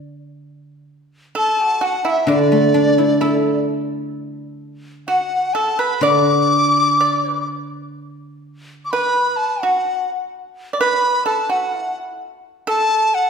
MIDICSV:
0, 0, Header, 1, 4, 480
1, 0, Start_track
1, 0, Tempo, 966184
1, 196, Time_signature, 2, 2, 24, 8
1, 673, Tempo, 930233
1, 2593, Tempo, 960000
1, 4513, Tempo, 937500
1, 6757, End_track
2, 0, Start_track
2, 0, Title_t, "Dizi"
2, 0, Program_c, 0, 73
2, 685, Note_on_c, 0, 81, 90
2, 927, Note_on_c, 0, 78, 78
2, 935, Note_off_c, 0, 81, 0
2, 1055, Note_on_c, 0, 76, 75
2, 1062, Note_off_c, 0, 78, 0
2, 1124, Note_off_c, 0, 76, 0
2, 1124, Note_on_c, 0, 76, 52
2, 1160, Note_on_c, 0, 74, 77
2, 1168, Note_off_c, 0, 76, 0
2, 1869, Note_off_c, 0, 74, 0
2, 2592, Note_on_c, 0, 78, 79
2, 2823, Note_on_c, 0, 81, 84
2, 2831, Note_off_c, 0, 78, 0
2, 2955, Note_on_c, 0, 83, 77
2, 2962, Note_off_c, 0, 81, 0
2, 3066, Note_on_c, 0, 86, 91
2, 3074, Note_off_c, 0, 83, 0
2, 3795, Note_off_c, 0, 86, 0
2, 4480, Note_on_c, 0, 86, 60
2, 4511, Note_on_c, 0, 83, 88
2, 4519, Note_off_c, 0, 86, 0
2, 4743, Note_on_c, 0, 81, 78
2, 4751, Note_off_c, 0, 83, 0
2, 4873, Note_on_c, 0, 78, 66
2, 4881, Note_off_c, 0, 81, 0
2, 5118, Note_off_c, 0, 78, 0
2, 5482, Note_on_c, 0, 83, 93
2, 5704, Note_off_c, 0, 83, 0
2, 5715, Note_on_c, 0, 81, 82
2, 5841, Note_on_c, 0, 78, 68
2, 5849, Note_off_c, 0, 81, 0
2, 6079, Note_off_c, 0, 78, 0
2, 6446, Note_on_c, 0, 81, 94
2, 6678, Note_on_c, 0, 78, 92
2, 6686, Note_off_c, 0, 81, 0
2, 6757, Note_off_c, 0, 78, 0
2, 6757, End_track
3, 0, Start_track
3, 0, Title_t, "Pipa"
3, 0, Program_c, 1, 105
3, 671, Note_on_c, 1, 69, 77
3, 826, Note_off_c, 1, 69, 0
3, 826, Note_on_c, 1, 66, 77
3, 897, Note_off_c, 1, 66, 0
3, 908, Note_on_c, 1, 66, 65
3, 1024, Note_off_c, 1, 66, 0
3, 1030, Note_on_c, 1, 64, 64
3, 1144, Note_off_c, 1, 64, 0
3, 1151, Note_on_c, 1, 62, 64
3, 1607, Note_off_c, 1, 62, 0
3, 1630, Note_on_c, 1, 64, 62
3, 1850, Note_off_c, 1, 64, 0
3, 2594, Note_on_c, 1, 66, 65
3, 2815, Note_off_c, 1, 66, 0
3, 2829, Note_on_c, 1, 69, 71
3, 2941, Note_off_c, 1, 69, 0
3, 2949, Note_on_c, 1, 71, 73
3, 3061, Note_off_c, 1, 71, 0
3, 3069, Note_on_c, 1, 74, 75
3, 3533, Note_off_c, 1, 74, 0
3, 3558, Note_on_c, 1, 74, 65
3, 3708, Note_off_c, 1, 74, 0
3, 3708, Note_on_c, 1, 71, 65
3, 3782, Note_off_c, 1, 71, 0
3, 4519, Note_on_c, 1, 71, 80
3, 4856, Note_off_c, 1, 71, 0
3, 4879, Note_on_c, 1, 66, 61
3, 5104, Note_off_c, 1, 66, 0
3, 5443, Note_on_c, 1, 74, 57
3, 5479, Note_off_c, 1, 74, 0
3, 5481, Note_on_c, 1, 71, 88
3, 5703, Note_off_c, 1, 71, 0
3, 5711, Note_on_c, 1, 69, 73
3, 5826, Note_off_c, 1, 69, 0
3, 5833, Note_on_c, 1, 66, 59
3, 5976, Note_off_c, 1, 66, 0
3, 5976, Note_on_c, 1, 64, 59
3, 6058, Note_off_c, 1, 64, 0
3, 6436, Note_on_c, 1, 69, 82
3, 6757, Note_off_c, 1, 69, 0
3, 6757, End_track
4, 0, Start_track
4, 0, Title_t, "Guzheng"
4, 0, Program_c, 2, 107
4, 0, Note_on_c, 2, 50, 45
4, 433, Note_off_c, 2, 50, 0
4, 1144, Note_on_c, 2, 50, 54
4, 1273, Note_on_c, 2, 57, 38
4, 1389, Note_on_c, 2, 62, 43
4, 1513, Note_on_c, 2, 64, 39
4, 1631, Note_on_c, 2, 69, 41
4, 2226, Note_off_c, 2, 57, 0
4, 2346, Note_off_c, 2, 62, 0
4, 2471, Note_off_c, 2, 64, 0
4, 2586, Note_off_c, 2, 50, 0
4, 2593, Note_off_c, 2, 69, 0
4, 3060, Note_on_c, 2, 50, 53
4, 4509, Note_off_c, 2, 50, 0
4, 6757, End_track
0, 0, End_of_file